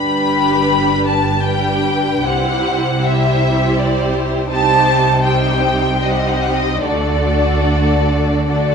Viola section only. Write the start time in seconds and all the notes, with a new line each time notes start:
Already playing: G3 D4
1.45 G3 D4
2.24 G3 E4
3.02 G3 E4
4.50 G3 D#4
5.25 G3 D#4
6.02 G3 D#4
6.83 A3 D4
8.48 A3 D4